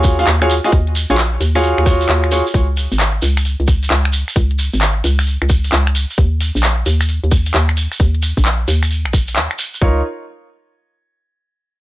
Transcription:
0.00 0.25 D#2 medium
0.00 0.15 F4 medium
0.00 0.15 F#4 medium
0.00 0.15 G#4 medium
0.00 0.15 C#5 loud
0.00 shekere medium
0.04 kick loud
0.04 closed hi-hat loud
0.19 0.25 F4 medium
0.19 0.25 F#4 medium
0.19 0.25 G#4 medium
0.19 0.25 F5 loud
0.19 closed hi-hat medium
0.19 shekere medium
0.27 0.60 D#2 loud
0.27 clap loud
0.27 shekere soft
0.42 0.52 F4 loud
0.42 0.52 F#4 medium
0.42 0.52 G#4 medium
0.42 0.52 C#5 loud
0.42 finger snap medium
0.42 closed hi-hat soft
0.50 closed hi-hat loud
0.50 shekere medium
0.64 0.70 F4 loud
0.64 0.70 F#4 medium
0.64 0.70 G#4 medium
0.64 0.70 D#5 loud
0.64 finger snap soft
0.64 shekere medium
0.72 1.06 D#2 loud
0.72 kick loud
0.72 closed hi-hat medium
0.72 shekere soft
0.87 closed hi-hat medium
0.95 closed hi-hat loud
0.95 shekere medium
1.10 1.38 A#1 medium
1.10 1.16 F4 medium
1.10 1.16 F#4 medium
1.10 1.16 G#4 medium
1.10 1.16 C#5 loud
1.10 shekere medium
1.18 clap loud
1.18 shekere soft
1.41 1.74 D#2 loud
1.41 closed hi-hat loud
1.41 shekere medium
1.55 1.84 F4 loud
1.55 1.84 F#4 medium
1.55 1.84 G#4 medium
1.55 1.84 C#5 loud
1.55 finger snap medium
1.55 closed hi-hat medium
1.55 shekere medium
1.63 closed hi-hat medium
1.63 shekere soft
1.78 2.07 D#2 medium
1.78 finger snap medium
1.78 closed hi-hat soft
1.86 2.30 F4 medium
1.86 2.30 F#4 medium
1.86 2.30 G#4 medium
1.86 2.30 C#5 medium
1.86 kick loud
1.86 closed hi-hat loud
1.86 shekere loud
2.01 closed hi-hat medium
2.01 shekere medium
2.09 2.42 D#2 loud
2.09 clap loud
2.09 shekere soft
2.24 finger snap medium
2.24 closed hi-hat soft
2.32 2.42 F4 medium
2.32 2.42 F#4 medium
2.32 2.42 G#4 medium
2.32 2.42 C#5 medium
2.32 closed hi-hat medium
2.32 shekere loud
2.47 shekere soft
2.54 2.88 C#2 loud
2.54 kick loud
2.54 closed hi-hat medium
2.54 shekere soft
2.77 closed hi-hat loud
2.77 shekere medium
2.92 3.20 G#1 medium
2.92 shekere medium
2.99 clap loud
2.99 shekere soft
3.22 3.56 C#2 loud
3.22 closed hi-hat loud
3.22 shekere medium
3.37 finger snap medium
3.37 closed hi-hat medium
3.37 shekere medium
3.45 closed hi-hat medium
3.45 shekere soft
3.60 3.88 C#2 medium
3.60 closed hi-hat soft
3.67 kick loud
3.67 closed hi-hat loud
3.67 shekere medium
3.83 closed hi-hat medium
3.83 shekere medium
3.90 4.24 C#2 loud
3.90 clap loud
3.90 shekere soft
4.05 finger snap medium
4.05 closed hi-hat medium
4.13 closed hi-hat loud
4.13 shekere medium
4.28 finger snap soft
4.28 shekere medium
4.36 4.70 C#2 loud
4.36 kick loud
4.36 closed hi-hat medium
4.36 shekere soft
4.51 closed hi-hat medium
4.59 closed hi-hat loud
4.59 shekere medium
4.73 5.02 G#1 medium
4.73 shekere soft
4.81 clap loud
4.81 shekere soft
5.04 5.38 C#2 loud
5.04 closed hi-hat loud
5.04 shekere medium
5.19 finger snap medium
5.19 closed hi-hat medium
5.19 shekere soft
5.27 closed hi-hat medium
5.27 shekere soft
5.42 5.70 C#2 medium
5.42 finger snap medium
5.42 closed hi-hat soft
5.49 kick loud
5.49 closed hi-hat loud
5.49 shekere medium
5.64 closed hi-hat medium
5.64 shekere soft
5.72 6.06 C#2 loud
5.72 clap loud
5.72 shekere soft
5.87 finger snap medium
5.87 closed hi-hat medium
5.95 closed hi-hat loud
5.95 shekere medium
6.10 shekere soft
6.18 6.51 D#2 loud
6.18 kick loud
6.18 closed hi-hat medium
6.41 closed hi-hat loud
6.41 shekere medium
6.55 6.84 A#1 medium
6.55 shekere soft
6.63 clap loud
6.63 shekere soft
6.86 7.20 D#2 loud
6.86 closed hi-hat loud
6.86 shekere medium
7.01 finger snap medium
7.01 closed hi-hat medium
7.01 shekere soft
7.09 closed hi-hat medium
7.09 shekere soft
7.24 7.52 D#2 medium
7.24 closed hi-hat soft
7.31 kick loud
7.31 closed hi-hat loud
7.31 shekere medium
7.46 closed hi-hat medium
7.46 shekere soft
7.54 7.88 D#2 loud
7.54 clap loud
7.54 shekere soft
7.69 finger snap medium
7.69 closed hi-hat medium
7.77 closed hi-hat loud
7.77 shekere medium
7.92 finger snap soft
7.92 shekere soft
8.00 8.33 D#2 loud
8.00 kick loud
8.00 closed hi-hat medium
8.00 shekere soft
8.15 closed hi-hat medium
8.22 closed hi-hat loud
8.22 shekere medium
8.37 8.66 A#1 medium
8.37 kick medium
8.37 shekere soft
8.45 clap loud
8.45 shekere soft
8.68 9.07 D#2 loud
8.68 closed hi-hat loud
8.68 shekere medium
8.83 finger snap medium
8.83 closed hi-hat medium
8.83 shekere soft
8.91 closed hi-hat medium
8.91 shekere soft
9.05 9.38 A#1 medium
9.05 finger snap medium
9.05 closed hi-hat soft
9.13 kick loud
9.13 closed hi-hat loud
9.13 shekere medium
9.27 closed hi-hat medium
9.27 shekere soft
9.36 9.48 D#2 medium
9.36 clap loud
9.36 shekere soft
9.51 finger snap medium
9.51 closed hi-hat medium
9.59 closed hi-hat loud
9.59 shekere loud
9.74 shekere medium
9.81 10.03 C#2 medium
9.81 10.00 D#4 medium
9.81 10.00 F4 medium
9.81 10.00 A#4 medium
9.81 10.00 C#5 medium
9.81 kick loud

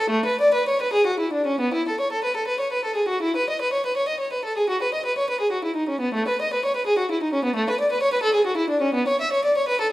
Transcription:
0.00 0.11 A4 medium
0.10 0.25 A3 medium
0.26 0.39 B4 medium
0.41 0.54 D5 medium
0.54 0.67 B4 medium
0.69 0.81 C#5 medium
0.82 0.94 B4 medium
0.93 1.07 G#4 medium
1.07 1.20 F#4 soft
1.20 1.34 E4 soft
1.33 1.48 D4 soft
1.47 1.61 C#4 medium
1.61 1.74 B3 medium
1.74 1.86 E4 medium
1.88 1.99 A4 soft
2.00 2.11 C#5 soft
2.12 2.23 A4 soft
2.24 2.35 B4 medium
2.36 2.48 A4 soft
2.48 2.59 B4 soft
2.60 2.72 C#5 soft
2.72 2.85 B4 soft
2.85 2.98 A4 soft
2.96 3.10 G#4 soft
3.09 3.23 F#4 soft
3.22 3.36 E4 medium
3.36 3.49 B4 medium
3.50 3.62 D#5 soft
3.61 3.73 B4 soft
3.73 3.85 C#5 soft
3.86 3.97 B4 soft
3.97 4.09 C#5 medium
4.08 4.20 D#5 soft
4.20 4.32 C#5 soft
4.33 4.44 B4 soft
4.45 4.56 A4 soft
4.57 4.69 G#4 soft
4.69 4.81 F#4 medium
4.82 4.93 B4 soft
4.94 5.05 D#5 soft
5.05 5.16 B4 soft
5.18 5.28 C#5 medium
5.30 5.40 B4 soft
5.40 5.52 G#4 medium
5.52 5.64 F#4 soft
5.65 5.76 E4 soft
5.76 5.89 D#4 soft
5.89 6.02 C#4 medium
6.01 6.14 B3 soft
6.14 6.27 A3 medium
6.28 6.40 B4 medium
6.41 6.52 D#5 medium
6.53 6.64 B4 medium
6.65 6.76 C#5 medium
6.76 6.87 B4 soft
6.87 6.98 G#4 medium
6.99 7.10 F#4 soft
7.11 7.22 E4 soft
7.23 7.33 D#4 soft
7.33 7.44 C#4 medium
7.45 7.55 B3 medium
7.56 7.67 A3 medium
7.70 7.79 B4 medium
7.80 7.90 D5 medium
7.92 8.01 B4 medium
8.02 8.12 C#5 medium
8.13 8.23 B4 medium
8.23 8.34 A4 medium
8.34 8.46 G#4 medium
8.47 8.58 F#4 medium
8.57 8.70 E4 medium
8.70 8.83 D4 medium
8.82 8.95 C#4 medium
8.95 9.08 B3 medium
9.08 9.20 C#5 medium
9.21 9.33 E5 medium
9.33 9.45 C#5 medium
9.45 9.56 D5 medium
9.57 9.68 C#5 soft
9.68 9.79 B4 medium
9.81 9.91 A4 medium

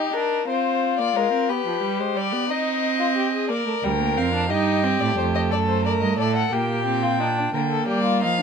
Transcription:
0.00 0.13 D#4 medium
0.00 0.44 D#4 medium
0.00 0.15 G4 medium
0.13 0.47 D4 medium
0.13 0.47 A#4 medium
0.47 1.00 C4 medium
0.47 1.51 F4 medium
0.47 0.98 C5 medium
0.99 1.16 A#3 medium
0.99 1.18 D5 medium
1.16 1.32 G#3 medium
1.16 1.51 A#4 medium
1.33 1.51 C4 medium
1.49 1.66 B3 medium
1.49 2.49 G4 medium
1.49 2.01 B4 medium
1.66 1.82 F3 medium
1.83 2.01 G3 medium
1.99 2.17 G#3 medium
1.99 2.19 C5 medium
2.16 2.34 G3 medium
2.16 2.52 D5 medium
2.33 2.51 B3 medium
2.49 3.51 C4 medium
2.49 2.98 D#4 medium
2.49 3.49 D#5 medium
2.99 3.06 F4 medium
3.16 3.32 G4 medium
3.33 3.51 G#4 medium
3.49 3.66 A#3 medium
3.49 4.49 A#4 medium
3.49 3.86 D5 medium
3.66 3.73 A3 medium
3.84 4.19 D2 medium
3.84 3.90 G3 medium
3.84 4.19 G5 medium
4.00 4.16 A#3 medium
4.17 4.52 F2 medium
4.17 4.33 C4 medium
4.17 4.52 F5 medium
4.34 4.49 D4 medium
4.50 5.00 G2 medium
4.50 4.85 D#4 medium
4.50 5.53 G4 medium
4.50 5.02 D#5 medium
4.84 5.16 C4 medium
5.01 5.17 A2 medium
5.01 5.17 D5 medium
5.17 5.53 F2 medium
5.17 6.49 A3 medium
5.17 5.24 C5 medium
5.35 5.42 D#5 medium
5.51 6.01 F#2 medium
5.51 5.84 A4 medium
5.51 5.59 D5 medium
5.69 5.85 C5 medium
5.85 6.18 A#4 medium
5.85 5.92 D5 medium
6.02 6.18 G2 medium
6.02 6.18 D#5 medium
6.19 6.52 A2 medium
6.19 6.54 A4 medium
6.19 6.35 D5 medium
6.36 6.54 F#5 medium
6.52 7.52 A#2 medium
6.52 6.85 A#3 medium
6.52 7.05 G4 medium
6.52 7.54 G5 medium
6.86 7.22 C4 medium
7.03 7.19 F4 medium
7.20 7.54 D4 medium
7.20 7.27 D#4 medium
7.37 7.44 D4 medium
7.54 7.86 D3 medium
7.54 8.42 A#3 medium
7.54 7.61 A#4 medium
7.54 7.86 G5 medium
7.71 7.87 A4 medium
7.88 8.24 G3 medium
7.88 8.04 G4 medium
7.88 8.21 D5 medium
8.04 8.23 F4 medium
8.21 8.42 F3 medium
8.21 8.38 D#4 medium
8.21 8.42 F5 medium
8.38 8.42 D4 medium

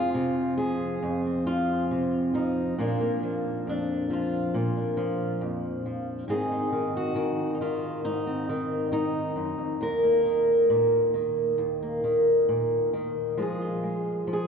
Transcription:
0.00 1.01 F2 medium
0.00 0.58 F3 soft
0.00 2.78 G#3 soft
0.00 1.25 C4 soft
0.00 0.57 F4 medium
0.14 0.59 C3 medium
0.58 1.45 F3 medium
0.58 1.46 G#4 medium
1.03 2.73 F2 medium
1.26 2.74 C4 soft
1.46 2.33 F3 medium
1.46 2.34 F4 medium
1.91 2.35 C3 medium
2.34 2.73 F3 medium
2.34 2.79 D#4 medium
2.78 3.66 A#2 medium
2.78 3.22 F3 soft
2.78 2.99 A#3 soft
2.78 3.67 D4 medium
3.01 6.23 A#3 soft
3.23 4.09 F3 medium
3.67 4.55 F2 medium
3.67 4.76 D4 medium
4.10 4.96 F3 medium
4.10 6.30 F4 medium
4.54 5.42 A#2 medium
4.77 6.23 D4 soft
4.97 5.84 F3 medium
5.41 6.23 F2 medium
5.86 6.24 F3 medium
6.28 8.03 G#2 medium
6.28 6.71 D#3 soft
6.28 8.25 C4 soft
6.28 6.51 D#4 soft
6.28 6.95 G#4 medium
6.51 7.53 D#4 soft
6.72 7.14 D#3 medium
6.97 7.54 F#4 medium
7.15 7.60 D#3 medium
7.55 7.61 D#4 medium
7.61 8.48 D#3 medium
7.61 8.04 F4 medium
8.04 9.35 G#2 medium
8.04 8.92 D#4 medium
8.27 9.75 C4 soft
8.49 8.91 D#3 medium
8.92 9.75 D#3 medium
8.92 9.81 D#4 medium
9.36 9.58 F#2 soft
9.58 9.80 F2 medium
9.81 11.57 D#2 medium
9.81 13.40 A#4 medium
10.03 11.81 A#3 soft
10.25 11.13 D#3 medium
10.70 11.14 A#2 medium
11.14 12.03 D#3 soft
11.58 13.39 D#2 medium
11.82 13.38 A#3 soft
12.04 12.92 D#3 medium
12.49 12.94 A#2 medium
12.93 13.38 D#3 medium
13.37 14.27 F3 medium
13.37 13.82 G#3 soft
13.37 13.61 F4 soft
13.42 14.31 G#4 medium
13.61 14.47 F4 soft
13.83 14.47 G#3 soft
14.27 14.47 F3 medium
14.33 14.47 G#4 medium

